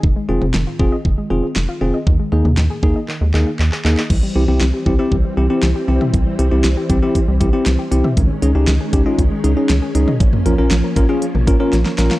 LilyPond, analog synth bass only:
\new Staff \with { instrumentName = "Analog synth bass" } { \clef bass \time 4/4 \key c \phrygian \tempo 4 = 118 f,,16 r16 f,,16 f,,16 f,,16 r16 f,,16 r16 f,,16 r16 f,,16 r16 f,,16 r16 f,,16 r16 | ees,16 r16 ees,16 ees,16 ees,16 r16 ees,16 r8 ees,16 ees,16 r16 ees,16 r16 ees,16 r16 | c,16 r16 c,16 c,16 c,16 r16 c,16 r16 c,16 r16 c,16 r16 c,16 r16 c,16 r16 | c,16 r16 c,16 c,16 c,16 r16 c,16 r8 c,16 c,16 r16 c,16 r16 c,16 r16 |
des,16 r16 des,16 des,16 des,16 r16 des,16 r16 des,16 r16 des,16 r16 des,16 r16 des,16 r16 | bes,,16 r16 bes,,16 bes,,16 bes,,16 r16 bes,,16 r8 bes,,16 bes,,16 r16 bes,,16 r16 bes,,16 r16 | }